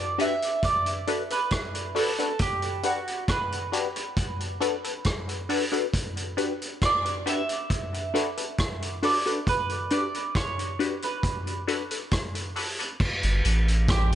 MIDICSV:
0, 0, Header, 1, 6, 480
1, 0, Start_track
1, 0, Key_signature, 2, "minor"
1, 0, Tempo, 883132
1, 1304, Time_signature, 4, 2, 24, 8
1, 7691, End_track
2, 0, Start_track
2, 0, Title_t, "Mandolin"
2, 0, Program_c, 0, 25
2, 0, Note_on_c, 0, 74, 100
2, 94, Note_off_c, 0, 74, 0
2, 114, Note_on_c, 0, 76, 91
2, 351, Note_on_c, 0, 74, 100
2, 356, Note_off_c, 0, 76, 0
2, 691, Note_off_c, 0, 74, 0
2, 718, Note_on_c, 0, 71, 89
2, 1046, Note_off_c, 0, 71, 0
2, 1076, Note_on_c, 0, 69, 77
2, 1294, Note_off_c, 0, 69, 0
2, 1314, Note_on_c, 0, 67, 93
2, 1533, Note_off_c, 0, 67, 0
2, 1554, Note_on_c, 0, 66, 76
2, 1791, Note_on_c, 0, 71, 79
2, 1796, Note_off_c, 0, 66, 0
2, 2246, Note_off_c, 0, 71, 0
2, 3724, Note_on_c, 0, 74, 94
2, 3938, Note_off_c, 0, 74, 0
2, 3960, Note_on_c, 0, 76, 105
2, 4891, Note_off_c, 0, 76, 0
2, 4917, Note_on_c, 0, 74, 90
2, 5134, Note_off_c, 0, 74, 0
2, 5157, Note_on_c, 0, 71, 92
2, 5394, Note_off_c, 0, 71, 0
2, 5396, Note_on_c, 0, 74, 87
2, 5614, Note_off_c, 0, 74, 0
2, 5633, Note_on_c, 0, 73, 88
2, 5998, Note_off_c, 0, 73, 0
2, 6000, Note_on_c, 0, 71, 70
2, 6808, Note_off_c, 0, 71, 0
2, 7561, Note_on_c, 0, 67, 79
2, 7691, Note_off_c, 0, 67, 0
2, 7691, End_track
3, 0, Start_track
3, 0, Title_t, "Synth stab"
3, 0, Program_c, 1, 62
3, 99, Note_on_c, 1, 62, 86
3, 101, Note_on_c, 1, 66, 82
3, 103, Note_on_c, 1, 67, 81
3, 106, Note_on_c, 1, 71, 105
3, 183, Note_off_c, 1, 62, 0
3, 184, Note_off_c, 1, 66, 0
3, 185, Note_off_c, 1, 67, 0
3, 187, Note_off_c, 1, 71, 0
3, 584, Note_on_c, 1, 62, 94
3, 587, Note_on_c, 1, 66, 76
3, 587, Note_on_c, 1, 69, 76
3, 590, Note_on_c, 1, 71, 106
3, 666, Note_off_c, 1, 62, 0
3, 667, Note_off_c, 1, 66, 0
3, 667, Note_off_c, 1, 69, 0
3, 669, Note_off_c, 1, 71, 0
3, 711, Note_on_c, 1, 71, 44
3, 712, Note_on_c, 1, 69, 40
3, 756, Note_off_c, 1, 69, 0
3, 756, Note_off_c, 1, 71, 0
3, 1059, Note_on_c, 1, 62, 85
3, 1063, Note_on_c, 1, 66, 82
3, 1064, Note_on_c, 1, 69, 81
3, 1066, Note_on_c, 1, 71, 101
3, 1143, Note_off_c, 1, 62, 0
3, 1145, Note_off_c, 1, 66, 0
3, 1146, Note_off_c, 1, 69, 0
3, 1147, Note_off_c, 1, 71, 0
3, 1188, Note_on_c, 1, 62, 74
3, 1191, Note_on_c, 1, 66, 66
3, 1192, Note_on_c, 1, 69, 64
3, 1195, Note_on_c, 1, 71, 77
3, 1263, Note_off_c, 1, 62, 0
3, 1265, Note_off_c, 1, 66, 0
3, 1265, Note_off_c, 1, 69, 0
3, 1267, Note_off_c, 1, 71, 0
3, 1541, Note_on_c, 1, 62, 85
3, 1542, Note_on_c, 1, 66, 90
3, 1545, Note_on_c, 1, 67, 80
3, 1547, Note_on_c, 1, 71, 95
3, 1624, Note_off_c, 1, 62, 0
3, 1625, Note_off_c, 1, 66, 0
3, 1626, Note_off_c, 1, 67, 0
3, 1628, Note_off_c, 1, 71, 0
3, 2023, Note_on_c, 1, 62, 83
3, 2026, Note_on_c, 1, 66, 82
3, 2029, Note_on_c, 1, 67, 75
3, 2031, Note_on_c, 1, 71, 92
3, 2105, Note_off_c, 1, 62, 0
3, 2107, Note_off_c, 1, 66, 0
3, 2108, Note_off_c, 1, 67, 0
3, 2109, Note_off_c, 1, 71, 0
3, 2503, Note_on_c, 1, 62, 90
3, 2505, Note_on_c, 1, 66, 83
3, 2507, Note_on_c, 1, 69, 92
3, 2508, Note_on_c, 1, 71, 105
3, 2585, Note_off_c, 1, 62, 0
3, 2587, Note_off_c, 1, 66, 0
3, 2587, Note_off_c, 1, 69, 0
3, 2588, Note_off_c, 1, 71, 0
3, 2632, Note_on_c, 1, 71, 43
3, 2633, Note_on_c, 1, 69, 37
3, 2676, Note_off_c, 1, 71, 0
3, 2677, Note_off_c, 1, 69, 0
3, 2984, Note_on_c, 1, 62, 89
3, 2988, Note_on_c, 1, 66, 87
3, 2989, Note_on_c, 1, 69, 82
3, 2991, Note_on_c, 1, 71, 91
3, 3066, Note_off_c, 1, 62, 0
3, 3068, Note_off_c, 1, 66, 0
3, 3068, Note_off_c, 1, 69, 0
3, 3070, Note_off_c, 1, 71, 0
3, 3108, Note_on_c, 1, 62, 71
3, 3111, Note_on_c, 1, 66, 65
3, 3112, Note_on_c, 1, 69, 65
3, 3116, Note_on_c, 1, 71, 79
3, 3183, Note_off_c, 1, 62, 0
3, 3185, Note_off_c, 1, 66, 0
3, 3186, Note_off_c, 1, 69, 0
3, 3187, Note_off_c, 1, 71, 0
3, 3462, Note_on_c, 1, 62, 92
3, 3465, Note_on_c, 1, 66, 85
3, 3465, Note_on_c, 1, 67, 84
3, 3467, Note_on_c, 1, 71, 99
3, 3545, Note_off_c, 1, 62, 0
3, 3546, Note_off_c, 1, 66, 0
3, 3546, Note_off_c, 1, 67, 0
3, 3547, Note_off_c, 1, 71, 0
3, 3944, Note_on_c, 1, 62, 85
3, 3945, Note_on_c, 1, 66, 75
3, 3948, Note_on_c, 1, 67, 82
3, 3950, Note_on_c, 1, 71, 97
3, 4026, Note_off_c, 1, 62, 0
3, 4027, Note_off_c, 1, 66, 0
3, 4028, Note_off_c, 1, 67, 0
3, 4029, Note_off_c, 1, 71, 0
3, 4423, Note_on_c, 1, 62, 90
3, 4427, Note_on_c, 1, 66, 83
3, 4428, Note_on_c, 1, 69, 85
3, 4430, Note_on_c, 1, 71, 97
3, 4506, Note_off_c, 1, 62, 0
3, 4508, Note_off_c, 1, 66, 0
3, 4508, Note_off_c, 1, 69, 0
3, 4509, Note_off_c, 1, 71, 0
3, 4552, Note_on_c, 1, 69, 43
3, 4553, Note_on_c, 1, 71, 45
3, 4597, Note_off_c, 1, 69, 0
3, 4597, Note_off_c, 1, 71, 0
3, 4905, Note_on_c, 1, 62, 78
3, 4907, Note_on_c, 1, 66, 76
3, 4910, Note_on_c, 1, 69, 84
3, 4911, Note_on_c, 1, 71, 86
3, 4987, Note_off_c, 1, 62, 0
3, 4988, Note_off_c, 1, 66, 0
3, 4989, Note_off_c, 1, 69, 0
3, 4990, Note_off_c, 1, 71, 0
3, 5030, Note_on_c, 1, 62, 70
3, 5033, Note_on_c, 1, 66, 69
3, 5035, Note_on_c, 1, 69, 64
3, 5037, Note_on_c, 1, 71, 78
3, 5105, Note_off_c, 1, 62, 0
3, 5106, Note_off_c, 1, 66, 0
3, 5107, Note_off_c, 1, 69, 0
3, 5108, Note_off_c, 1, 71, 0
3, 5386, Note_on_c, 1, 62, 97
3, 5389, Note_on_c, 1, 66, 78
3, 5391, Note_on_c, 1, 67, 77
3, 5394, Note_on_c, 1, 71, 108
3, 5467, Note_off_c, 1, 62, 0
3, 5469, Note_off_c, 1, 66, 0
3, 5470, Note_off_c, 1, 67, 0
3, 5471, Note_off_c, 1, 71, 0
3, 5866, Note_on_c, 1, 62, 93
3, 5869, Note_on_c, 1, 66, 88
3, 5871, Note_on_c, 1, 67, 73
3, 5871, Note_on_c, 1, 71, 101
3, 5947, Note_off_c, 1, 62, 0
3, 5949, Note_off_c, 1, 66, 0
3, 5950, Note_off_c, 1, 67, 0
3, 5950, Note_off_c, 1, 71, 0
3, 6345, Note_on_c, 1, 62, 88
3, 6347, Note_on_c, 1, 66, 84
3, 6349, Note_on_c, 1, 69, 81
3, 6351, Note_on_c, 1, 71, 97
3, 6427, Note_off_c, 1, 62, 0
3, 6428, Note_off_c, 1, 66, 0
3, 6429, Note_off_c, 1, 69, 0
3, 6430, Note_off_c, 1, 71, 0
3, 6474, Note_on_c, 1, 71, 45
3, 6476, Note_on_c, 1, 69, 40
3, 6518, Note_off_c, 1, 71, 0
3, 6519, Note_off_c, 1, 69, 0
3, 6825, Note_on_c, 1, 62, 87
3, 6826, Note_on_c, 1, 66, 73
3, 6828, Note_on_c, 1, 69, 86
3, 6832, Note_on_c, 1, 71, 94
3, 6907, Note_off_c, 1, 62, 0
3, 6907, Note_off_c, 1, 66, 0
3, 6908, Note_off_c, 1, 69, 0
3, 6910, Note_off_c, 1, 71, 0
3, 6951, Note_on_c, 1, 62, 71
3, 6953, Note_on_c, 1, 66, 70
3, 6955, Note_on_c, 1, 69, 65
3, 6958, Note_on_c, 1, 71, 83
3, 7025, Note_off_c, 1, 62, 0
3, 7026, Note_off_c, 1, 66, 0
3, 7027, Note_off_c, 1, 69, 0
3, 7029, Note_off_c, 1, 71, 0
3, 7306, Note_on_c, 1, 62, 100
3, 7307, Note_on_c, 1, 66, 87
3, 7309, Note_on_c, 1, 67, 87
3, 7314, Note_on_c, 1, 71, 104
3, 7387, Note_off_c, 1, 62, 0
3, 7388, Note_off_c, 1, 66, 0
3, 7389, Note_off_c, 1, 67, 0
3, 7391, Note_off_c, 1, 71, 0
3, 7691, End_track
4, 0, Start_track
4, 0, Title_t, "Tonewheel organ"
4, 0, Program_c, 2, 16
4, 7304, Note_on_c, 2, 55, 71
4, 7310, Note_on_c, 2, 59, 71
4, 7311, Note_on_c, 2, 66, 81
4, 7346, Note_off_c, 2, 55, 0
4, 7348, Note_off_c, 2, 59, 0
4, 7349, Note_off_c, 2, 66, 0
4, 7691, End_track
5, 0, Start_track
5, 0, Title_t, "Sub bass"
5, 0, Program_c, 3, 38
5, 7195, Note_on_c, 3, 31, 88
5, 7295, Note_off_c, 3, 31, 0
5, 7311, Note_on_c, 3, 33, 87
5, 7691, Note_off_c, 3, 33, 0
5, 7691, End_track
6, 0, Start_track
6, 0, Title_t, "Drums"
6, 106, Note_on_c, 9, 42, 73
6, 161, Note_off_c, 9, 42, 0
6, 230, Note_on_c, 9, 42, 48
6, 284, Note_off_c, 9, 42, 0
6, 342, Note_on_c, 9, 36, 114
6, 343, Note_on_c, 9, 42, 101
6, 396, Note_off_c, 9, 36, 0
6, 397, Note_off_c, 9, 42, 0
6, 468, Note_on_c, 9, 42, 52
6, 522, Note_off_c, 9, 42, 0
6, 584, Note_on_c, 9, 42, 66
6, 638, Note_off_c, 9, 42, 0
6, 709, Note_on_c, 9, 42, 53
6, 763, Note_off_c, 9, 42, 0
6, 819, Note_on_c, 9, 42, 72
6, 823, Note_on_c, 9, 36, 100
6, 827, Note_on_c, 9, 37, 108
6, 873, Note_off_c, 9, 42, 0
6, 877, Note_off_c, 9, 36, 0
6, 881, Note_off_c, 9, 37, 0
6, 949, Note_on_c, 9, 42, 57
6, 1004, Note_off_c, 9, 42, 0
6, 1065, Note_on_c, 9, 46, 74
6, 1119, Note_off_c, 9, 46, 0
6, 1194, Note_on_c, 9, 42, 54
6, 1248, Note_off_c, 9, 42, 0
6, 1299, Note_on_c, 9, 42, 98
6, 1303, Note_on_c, 9, 36, 112
6, 1354, Note_off_c, 9, 42, 0
6, 1357, Note_off_c, 9, 36, 0
6, 1425, Note_on_c, 9, 42, 49
6, 1479, Note_off_c, 9, 42, 0
6, 1540, Note_on_c, 9, 42, 64
6, 1594, Note_off_c, 9, 42, 0
6, 1672, Note_on_c, 9, 42, 43
6, 1726, Note_off_c, 9, 42, 0
6, 1783, Note_on_c, 9, 42, 90
6, 1784, Note_on_c, 9, 36, 115
6, 1790, Note_on_c, 9, 37, 102
6, 1838, Note_off_c, 9, 36, 0
6, 1838, Note_off_c, 9, 42, 0
6, 1844, Note_off_c, 9, 37, 0
6, 1915, Note_on_c, 9, 42, 52
6, 1970, Note_off_c, 9, 42, 0
6, 2029, Note_on_c, 9, 42, 79
6, 2083, Note_off_c, 9, 42, 0
6, 2152, Note_on_c, 9, 42, 47
6, 2206, Note_off_c, 9, 42, 0
6, 2265, Note_on_c, 9, 36, 103
6, 2266, Note_on_c, 9, 42, 97
6, 2320, Note_off_c, 9, 36, 0
6, 2321, Note_off_c, 9, 42, 0
6, 2394, Note_on_c, 9, 42, 52
6, 2448, Note_off_c, 9, 42, 0
6, 2509, Note_on_c, 9, 42, 77
6, 2563, Note_off_c, 9, 42, 0
6, 2633, Note_on_c, 9, 42, 54
6, 2687, Note_off_c, 9, 42, 0
6, 2742, Note_on_c, 9, 42, 80
6, 2746, Note_on_c, 9, 36, 102
6, 2750, Note_on_c, 9, 37, 103
6, 2796, Note_off_c, 9, 42, 0
6, 2801, Note_off_c, 9, 36, 0
6, 2805, Note_off_c, 9, 37, 0
6, 2874, Note_on_c, 9, 42, 56
6, 2928, Note_off_c, 9, 42, 0
6, 2986, Note_on_c, 9, 46, 75
6, 3040, Note_off_c, 9, 46, 0
6, 3117, Note_on_c, 9, 42, 57
6, 3171, Note_off_c, 9, 42, 0
6, 3226, Note_on_c, 9, 36, 106
6, 3228, Note_on_c, 9, 42, 100
6, 3280, Note_off_c, 9, 36, 0
6, 3282, Note_off_c, 9, 42, 0
6, 3353, Note_on_c, 9, 42, 50
6, 3407, Note_off_c, 9, 42, 0
6, 3467, Note_on_c, 9, 42, 62
6, 3521, Note_off_c, 9, 42, 0
6, 3596, Note_on_c, 9, 42, 48
6, 3651, Note_off_c, 9, 42, 0
6, 3705, Note_on_c, 9, 36, 104
6, 3705, Note_on_c, 9, 42, 89
6, 3711, Note_on_c, 9, 37, 113
6, 3759, Note_off_c, 9, 42, 0
6, 3760, Note_off_c, 9, 36, 0
6, 3765, Note_off_c, 9, 37, 0
6, 3835, Note_on_c, 9, 42, 52
6, 3889, Note_off_c, 9, 42, 0
6, 3950, Note_on_c, 9, 42, 81
6, 4005, Note_off_c, 9, 42, 0
6, 4071, Note_on_c, 9, 42, 48
6, 4126, Note_off_c, 9, 42, 0
6, 4186, Note_on_c, 9, 36, 102
6, 4187, Note_on_c, 9, 42, 105
6, 4240, Note_off_c, 9, 36, 0
6, 4242, Note_off_c, 9, 42, 0
6, 4317, Note_on_c, 9, 42, 50
6, 4372, Note_off_c, 9, 42, 0
6, 4432, Note_on_c, 9, 42, 72
6, 4487, Note_off_c, 9, 42, 0
6, 4552, Note_on_c, 9, 42, 54
6, 4606, Note_off_c, 9, 42, 0
6, 4665, Note_on_c, 9, 42, 74
6, 4667, Note_on_c, 9, 36, 108
6, 4673, Note_on_c, 9, 37, 114
6, 4719, Note_off_c, 9, 42, 0
6, 4721, Note_off_c, 9, 36, 0
6, 4727, Note_off_c, 9, 37, 0
6, 4796, Note_on_c, 9, 42, 57
6, 4850, Note_off_c, 9, 42, 0
6, 4907, Note_on_c, 9, 46, 74
6, 4961, Note_off_c, 9, 46, 0
6, 5038, Note_on_c, 9, 42, 59
6, 5092, Note_off_c, 9, 42, 0
6, 5147, Note_on_c, 9, 36, 111
6, 5149, Note_on_c, 9, 42, 101
6, 5201, Note_off_c, 9, 36, 0
6, 5203, Note_off_c, 9, 42, 0
6, 5270, Note_on_c, 9, 42, 49
6, 5324, Note_off_c, 9, 42, 0
6, 5383, Note_on_c, 9, 42, 64
6, 5437, Note_off_c, 9, 42, 0
6, 5514, Note_on_c, 9, 42, 46
6, 5568, Note_off_c, 9, 42, 0
6, 5626, Note_on_c, 9, 36, 112
6, 5627, Note_on_c, 9, 42, 90
6, 5633, Note_on_c, 9, 37, 105
6, 5680, Note_off_c, 9, 36, 0
6, 5681, Note_off_c, 9, 42, 0
6, 5687, Note_off_c, 9, 37, 0
6, 5756, Note_on_c, 9, 42, 54
6, 5811, Note_off_c, 9, 42, 0
6, 5871, Note_on_c, 9, 42, 76
6, 5925, Note_off_c, 9, 42, 0
6, 5991, Note_on_c, 9, 42, 47
6, 6046, Note_off_c, 9, 42, 0
6, 6105, Note_on_c, 9, 36, 101
6, 6107, Note_on_c, 9, 42, 98
6, 6160, Note_off_c, 9, 36, 0
6, 6161, Note_off_c, 9, 42, 0
6, 6234, Note_on_c, 9, 42, 48
6, 6289, Note_off_c, 9, 42, 0
6, 6350, Note_on_c, 9, 42, 75
6, 6404, Note_off_c, 9, 42, 0
6, 6472, Note_on_c, 9, 42, 58
6, 6526, Note_off_c, 9, 42, 0
6, 6584, Note_on_c, 9, 42, 81
6, 6586, Note_on_c, 9, 36, 104
6, 6592, Note_on_c, 9, 37, 101
6, 6638, Note_off_c, 9, 42, 0
6, 6641, Note_off_c, 9, 36, 0
6, 6647, Note_off_c, 9, 37, 0
6, 6713, Note_on_c, 9, 42, 55
6, 6767, Note_off_c, 9, 42, 0
6, 6827, Note_on_c, 9, 46, 77
6, 6881, Note_off_c, 9, 46, 0
6, 6958, Note_on_c, 9, 42, 61
6, 7012, Note_off_c, 9, 42, 0
6, 7066, Note_on_c, 9, 36, 116
6, 7067, Note_on_c, 9, 49, 100
6, 7120, Note_off_c, 9, 36, 0
6, 7122, Note_off_c, 9, 49, 0
6, 7191, Note_on_c, 9, 42, 54
6, 7245, Note_off_c, 9, 42, 0
6, 7309, Note_on_c, 9, 42, 69
6, 7363, Note_off_c, 9, 42, 0
6, 7436, Note_on_c, 9, 42, 52
6, 7491, Note_off_c, 9, 42, 0
6, 7547, Note_on_c, 9, 36, 124
6, 7549, Note_on_c, 9, 42, 93
6, 7555, Note_on_c, 9, 37, 120
6, 7601, Note_off_c, 9, 36, 0
6, 7603, Note_off_c, 9, 42, 0
6, 7609, Note_off_c, 9, 37, 0
6, 7691, End_track
0, 0, End_of_file